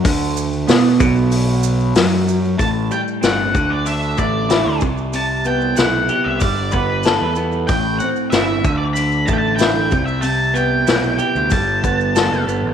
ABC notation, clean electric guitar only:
X:1
M:4/4
L:1/8
Q:1/4=94
K:Ador
V:1 name="Clean electric guitar"
D,2 B, B,,3 F,2 | A,, G, C D, D A, E C, | C, B, E G G, B, A B, | A,, C E D, D A, E C, |
C, B, E G G, B, A B, |]